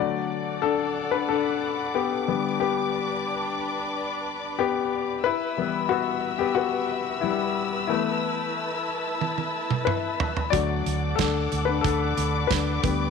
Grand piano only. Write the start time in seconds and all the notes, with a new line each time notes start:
Already playing: D3 F#3 A3 F#4 D5
0.62 D4 A4
1.11 D4 B4
1.29 D4 A4
1.95 B3 G4
2.27 D3 G3 B3
2.60 B3 G4
4.59 B3 G4
5.24 E4 B4
5.57 E3 G3 B3
5.89 B3 F#4
6.39 B3 G4
6.55 B3 F#4
7.21 G3 E4
7.87 E3 A3 B3 E4
9.85 E4 B4
10.50 F#3 A3 D4 F#4 D5
11.16 D4 A4
11.65 D4 B4
11.81 D4 A4
12.47 D4 B4
12.83 G3 B3 D4